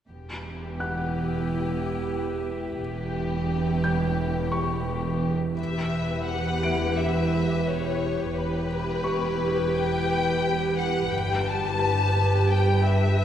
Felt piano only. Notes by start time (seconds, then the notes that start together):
0.80 F#5 F#6
3.84 G6
4.52 C#6
6.63 E5 D7
9.04 C#6
11.79 A5